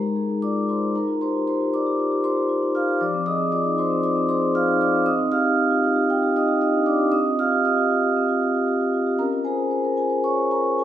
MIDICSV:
0, 0, Header, 1, 2, 480
1, 0, Start_track
1, 0, Tempo, 516796
1, 868, Time_signature, 4, 2, 24, 8
1, 7102, Tempo, 524017
1, 10029, End_track
2, 0, Start_track
2, 0, Title_t, "Vibraphone"
2, 0, Program_c, 0, 11
2, 0, Note_on_c, 0, 56, 59
2, 0, Note_on_c, 0, 70, 47
2, 0, Note_on_c, 0, 82, 59
2, 23, Note_on_c, 0, 63, 40
2, 55, Control_c, 0, 64, 127
2, 148, Note_on_c, 0, 68, 46
2, 217, Note_off_c, 0, 63, 0
2, 274, Note_on_c, 0, 63, 45
2, 339, Note_off_c, 0, 68, 0
2, 352, Note_off_c, 0, 70, 0
2, 383, Note_off_c, 0, 82, 0
2, 394, Note_on_c, 0, 86, 76
2, 396, Note_on_c, 0, 65, 45
2, 406, Note_on_c, 0, 74, 57
2, 463, Note_off_c, 0, 63, 0
2, 524, Note_on_c, 0, 63, 41
2, 584, Note_off_c, 0, 65, 0
2, 621, Note_off_c, 0, 74, 0
2, 631, Note_off_c, 0, 86, 0
2, 636, Note_off_c, 0, 63, 0
2, 640, Note_on_c, 0, 65, 47
2, 642, Note_on_c, 0, 84, 56
2, 657, Note_on_c, 0, 72, 44
2, 774, Note_on_c, 0, 63, 45
2, 826, Note_off_c, 0, 65, 0
2, 836, Note_off_c, 0, 56, 0
2, 867, Note_off_c, 0, 72, 0
2, 876, Note_off_c, 0, 84, 0
2, 878, Note_off_c, 0, 63, 0
2, 885, Control_c, 0, 64, 0
2, 885, Note_on_c, 0, 82, 65
2, 889, Note_on_c, 0, 63, 61
2, 904, Note_on_c, 0, 70, 57
2, 1003, Note_on_c, 0, 65, 44
2, 1023, Control_c, 0, 64, 127
2, 1113, Note_off_c, 0, 70, 0
2, 1119, Note_off_c, 0, 82, 0
2, 1126, Note_on_c, 0, 84, 70
2, 1128, Note_on_c, 0, 67, 47
2, 1138, Note_on_c, 0, 72, 58
2, 1190, Note_off_c, 0, 65, 0
2, 1258, Note_on_c, 0, 65, 42
2, 1313, Note_off_c, 0, 67, 0
2, 1351, Note_off_c, 0, 72, 0
2, 1361, Note_off_c, 0, 84, 0
2, 1368, Note_on_c, 0, 67, 51
2, 1370, Note_on_c, 0, 84, 66
2, 1381, Note_on_c, 0, 72, 52
2, 1439, Note_off_c, 0, 65, 0
2, 1492, Note_on_c, 0, 65, 47
2, 1554, Note_off_c, 0, 67, 0
2, 1593, Note_off_c, 0, 72, 0
2, 1603, Note_off_c, 0, 84, 0
2, 1604, Note_off_c, 0, 65, 0
2, 1614, Note_on_c, 0, 65, 45
2, 1614, Note_on_c, 0, 86, 77
2, 1628, Note_on_c, 0, 74, 53
2, 1731, Note_on_c, 0, 67, 50
2, 1797, Note_off_c, 0, 65, 0
2, 1816, Note_off_c, 0, 63, 0
2, 1854, Note_on_c, 0, 65, 55
2, 1915, Note_off_c, 0, 67, 0
2, 1965, Note_on_c, 0, 67, 54
2, 2036, Note_off_c, 0, 65, 0
2, 2059, Note_off_c, 0, 74, 0
2, 2081, Note_on_c, 0, 65, 56
2, 2081, Note_on_c, 0, 84, 84
2, 2084, Note_off_c, 0, 86, 0
2, 2088, Note_on_c, 0, 72, 58
2, 2152, Note_off_c, 0, 67, 0
2, 2200, Note_on_c, 0, 67, 45
2, 2269, Note_off_c, 0, 65, 0
2, 2312, Note_on_c, 0, 65, 55
2, 2389, Note_off_c, 0, 67, 0
2, 2437, Note_on_c, 0, 63, 49
2, 2505, Note_off_c, 0, 65, 0
2, 2527, Note_off_c, 0, 72, 0
2, 2553, Note_on_c, 0, 65, 53
2, 2554, Note_on_c, 0, 89, 82
2, 2555, Note_off_c, 0, 63, 0
2, 2557, Note_off_c, 0, 84, 0
2, 2565, Note_on_c, 0, 77, 66
2, 2676, Note_on_c, 0, 67, 47
2, 2745, Note_off_c, 0, 65, 0
2, 2783, Note_off_c, 0, 77, 0
2, 2791, Note_on_c, 0, 86, 82
2, 2793, Note_off_c, 0, 89, 0
2, 2795, Note_off_c, 0, 67, 0
2, 2796, Note_on_c, 0, 53, 69
2, 2809, Control_c, 0, 64, 0
2, 2809, Note_on_c, 0, 74, 63
2, 2920, Note_on_c, 0, 60, 52
2, 2940, Control_c, 0, 64, 127
2, 3025, Note_off_c, 0, 74, 0
2, 3029, Note_on_c, 0, 87, 91
2, 3031, Note_on_c, 0, 68, 58
2, 3032, Note_off_c, 0, 86, 0
2, 3044, Note_on_c, 0, 75, 69
2, 3108, Note_off_c, 0, 60, 0
2, 3156, Note_on_c, 0, 60, 46
2, 3224, Note_off_c, 0, 68, 0
2, 3262, Note_off_c, 0, 75, 0
2, 3270, Note_off_c, 0, 87, 0
2, 3270, Note_on_c, 0, 65, 53
2, 3272, Note_on_c, 0, 86, 85
2, 3282, Note_on_c, 0, 74, 59
2, 3346, Note_off_c, 0, 60, 0
2, 3390, Note_on_c, 0, 63, 54
2, 3463, Note_off_c, 0, 65, 0
2, 3500, Note_off_c, 0, 74, 0
2, 3511, Note_off_c, 0, 63, 0
2, 3511, Note_off_c, 0, 86, 0
2, 3511, Note_on_c, 0, 65, 55
2, 3514, Note_on_c, 0, 84, 72
2, 3524, Note_on_c, 0, 72, 58
2, 3630, Note_on_c, 0, 60, 52
2, 3703, Note_off_c, 0, 65, 0
2, 3723, Note_off_c, 0, 53, 0
2, 3740, Note_off_c, 0, 72, 0
2, 3746, Note_on_c, 0, 65, 57
2, 3747, Note_on_c, 0, 86, 82
2, 3752, Note_off_c, 0, 84, 0
2, 3755, Note_on_c, 0, 74, 66
2, 3822, Note_off_c, 0, 60, 0
2, 3859, Note_on_c, 0, 60, 53
2, 3940, Note_off_c, 0, 65, 0
2, 3975, Note_off_c, 0, 74, 0
2, 3983, Note_on_c, 0, 84, 81
2, 3985, Note_on_c, 0, 68, 61
2, 3988, Note_off_c, 0, 86, 0
2, 3993, Note_on_c, 0, 72, 68
2, 4055, Note_off_c, 0, 60, 0
2, 4110, Note_on_c, 0, 60, 50
2, 4178, Note_off_c, 0, 68, 0
2, 4213, Note_off_c, 0, 72, 0
2, 4221, Note_on_c, 0, 65, 60
2, 4225, Note_off_c, 0, 84, 0
2, 4227, Note_on_c, 0, 89, 93
2, 4236, Note_on_c, 0, 77, 74
2, 4301, Note_off_c, 0, 60, 0
2, 4348, Note_on_c, 0, 63, 54
2, 4416, Note_off_c, 0, 65, 0
2, 4455, Note_off_c, 0, 77, 0
2, 4467, Note_off_c, 0, 63, 0
2, 4467, Note_off_c, 0, 89, 0
2, 4470, Note_on_c, 0, 86, 80
2, 4474, Note_on_c, 0, 65, 56
2, 4481, Note_on_c, 0, 74, 65
2, 4592, Note_on_c, 0, 60, 49
2, 4661, Note_off_c, 0, 65, 0
2, 4685, Note_off_c, 0, 60, 0
2, 4696, Note_on_c, 0, 60, 75
2, 4697, Note_off_c, 0, 74, 0
2, 4702, Note_on_c, 0, 87, 95
2, 4707, Note_off_c, 0, 86, 0
2, 4711, Note_on_c, 0, 75, 65
2, 4725, Control_c, 0, 64, 0
2, 4821, Note_on_c, 0, 63, 57
2, 4847, Control_c, 0, 64, 127
2, 4930, Note_off_c, 0, 75, 0
2, 4938, Note_on_c, 0, 89, 98
2, 4939, Note_on_c, 0, 67, 63
2, 4942, Note_off_c, 0, 87, 0
2, 4951, Note_on_c, 0, 77, 77
2, 5013, Note_off_c, 0, 63, 0
2, 5059, Note_on_c, 0, 63, 53
2, 5132, Note_off_c, 0, 67, 0
2, 5170, Note_on_c, 0, 67, 60
2, 5251, Note_off_c, 0, 63, 0
2, 5301, Note_on_c, 0, 65, 52
2, 5366, Note_off_c, 0, 67, 0
2, 5420, Note_off_c, 0, 65, 0
2, 5421, Note_on_c, 0, 63, 55
2, 5535, Note_on_c, 0, 67, 56
2, 5613, Note_off_c, 0, 63, 0
2, 5626, Note_off_c, 0, 60, 0
2, 5626, Note_off_c, 0, 77, 0
2, 5657, Note_off_c, 0, 89, 0
2, 5666, Note_on_c, 0, 79, 91
2, 5667, Note_on_c, 0, 63, 60
2, 5730, Note_off_c, 0, 67, 0
2, 5785, Note_on_c, 0, 67, 54
2, 5856, Note_off_c, 0, 63, 0
2, 5891, Note_off_c, 0, 79, 0
2, 5907, Note_on_c, 0, 63, 59
2, 5910, Note_on_c, 0, 87, 89
2, 5919, Note_on_c, 0, 75, 72
2, 5975, Note_off_c, 0, 67, 0
2, 6018, Note_on_c, 0, 67, 58
2, 6096, Note_off_c, 0, 63, 0
2, 6133, Note_off_c, 0, 87, 0
2, 6134, Note_off_c, 0, 75, 0
2, 6140, Note_on_c, 0, 63, 58
2, 6144, Note_on_c, 0, 87, 82
2, 6151, Note_on_c, 0, 75, 68
2, 6211, Note_off_c, 0, 67, 0
2, 6258, Note_on_c, 0, 62, 49
2, 6332, Note_off_c, 0, 63, 0
2, 6369, Note_off_c, 0, 75, 0
2, 6373, Note_on_c, 0, 86, 87
2, 6374, Note_on_c, 0, 63, 58
2, 6379, Note_off_c, 0, 62, 0
2, 6382, Note_off_c, 0, 87, 0
2, 6384, Note_on_c, 0, 74, 62
2, 6487, Note_on_c, 0, 67, 57
2, 6569, Note_off_c, 0, 63, 0
2, 6606, Note_off_c, 0, 74, 0
2, 6610, Note_on_c, 0, 87, 91
2, 6613, Note_on_c, 0, 60, 77
2, 6614, Note_off_c, 0, 67, 0
2, 6617, Note_off_c, 0, 86, 0
2, 6623, Note_on_c, 0, 75, 65
2, 6639, Control_c, 0, 64, 0
2, 6746, Note_on_c, 0, 65, 55
2, 6773, Control_c, 0, 64, 127
2, 6845, Note_off_c, 0, 75, 0
2, 6855, Note_off_c, 0, 87, 0
2, 6865, Note_on_c, 0, 67, 56
2, 6865, Note_on_c, 0, 89, 96
2, 6878, Note_on_c, 0, 77, 68
2, 6935, Note_off_c, 0, 65, 0
2, 6983, Note_on_c, 0, 65, 50
2, 7054, Note_off_c, 0, 67, 0
2, 7093, Note_off_c, 0, 77, 0
2, 7102, Note_off_c, 0, 89, 0
2, 7108, Note_on_c, 0, 67, 54
2, 7108, Note_on_c, 0, 87, 83
2, 7123, Note_on_c, 0, 75, 66
2, 7173, Note_off_c, 0, 65, 0
2, 7218, Note_on_c, 0, 65, 51
2, 7294, Note_off_c, 0, 67, 0
2, 7326, Note_off_c, 0, 65, 0
2, 7337, Note_on_c, 0, 65, 52
2, 7457, Note_on_c, 0, 67, 53
2, 7528, Note_off_c, 0, 65, 0
2, 7544, Note_off_c, 0, 60, 0
2, 7576, Note_on_c, 0, 60, 64
2, 7648, Note_off_c, 0, 67, 0
2, 7692, Note_on_c, 0, 65, 54
2, 7822, Note_on_c, 0, 67, 62
2, 7885, Note_off_c, 0, 65, 0
2, 7926, Note_on_c, 0, 65, 53
2, 8009, Note_off_c, 0, 67, 0
2, 8028, Note_off_c, 0, 75, 0
2, 8048, Note_on_c, 0, 67, 59
2, 8057, Note_off_c, 0, 87, 0
2, 8120, Note_off_c, 0, 65, 0
2, 8161, Note_on_c, 0, 65, 51
2, 8241, Note_off_c, 0, 67, 0
2, 8274, Note_off_c, 0, 65, 0
2, 8285, Note_on_c, 0, 65, 56
2, 8401, Note_on_c, 0, 67, 50
2, 8479, Note_off_c, 0, 65, 0
2, 8500, Note_off_c, 0, 60, 0
2, 8513, Note_on_c, 0, 82, 91
2, 8515, Note_on_c, 0, 61, 68
2, 8520, Note_on_c, 0, 70, 67
2, 8525, Note_off_c, 0, 67, 0
2, 8547, Control_c, 0, 64, 0
2, 8641, Note_on_c, 0, 65, 47
2, 8702, Control_c, 0, 64, 127
2, 8746, Note_off_c, 0, 70, 0
2, 8748, Note_on_c, 0, 80, 66
2, 8752, Note_on_c, 0, 72, 59
2, 8760, Note_off_c, 0, 82, 0
2, 8768, Note_on_c, 0, 68, 53
2, 8835, Note_off_c, 0, 65, 0
2, 8872, Note_on_c, 0, 65, 45
2, 8950, Note_off_c, 0, 72, 0
2, 8993, Note_on_c, 0, 72, 52
2, 9069, Note_off_c, 0, 65, 0
2, 9115, Note_on_c, 0, 70, 52
2, 9190, Note_off_c, 0, 72, 0
2, 9211, Note_off_c, 0, 68, 0
2, 9221, Note_off_c, 0, 80, 0
2, 9232, Note_on_c, 0, 80, 65
2, 9233, Note_on_c, 0, 65, 51
2, 9239, Note_off_c, 0, 70, 0
2, 9248, Note_on_c, 0, 68, 50
2, 9347, Note_on_c, 0, 72, 48
2, 9431, Note_off_c, 0, 65, 0
2, 9449, Note_off_c, 0, 61, 0
2, 9470, Note_off_c, 0, 68, 0
2, 9477, Note_on_c, 0, 65, 50
2, 9478, Note_on_c, 0, 85, 80
2, 9479, Note_off_c, 0, 80, 0
2, 9488, Note_on_c, 0, 73, 61
2, 9549, Note_off_c, 0, 72, 0
2, 9604, Note_on_c, 0, 72, 46
2, 9677, Note_off_c, 0, 65, 0
2, 9714, Note_off_c, 0, 73, 0
2, 9726, Note_on_c, 0, 65, 49
2, 9727, Note_off_c, 0, 85, 0
2, 9728, Note_on_c, 0, 82, 76
2, 9736, Note_on_c, 0, 70, 53
2, 9803, Note_off_c, 0, 72, 0
2, 9849, Note_on_c, 0, 72, 45
2, 9927, Note_off_c, 0, 65, 0
2, 9964, Note_off_c, 0, 70, 0
2, 9977, Note_off_c, 0, 82, 0
2, 9981, Note_on_c, 0, 80, 59
2, 9983, Note_on_c, 0, 65, 51
2, 9994, Note_on_c, 0, 68, 42
2, 10029, Note_off_c, 0, 65, 0
2, 10029, Note_off_c, 0, 68, 0
2, 10029, Note_off_c, 0, 72, 0
2, 10029, Note_off_c, 0, 80, 0
2, 10029, End_track
0, 0, End_of_file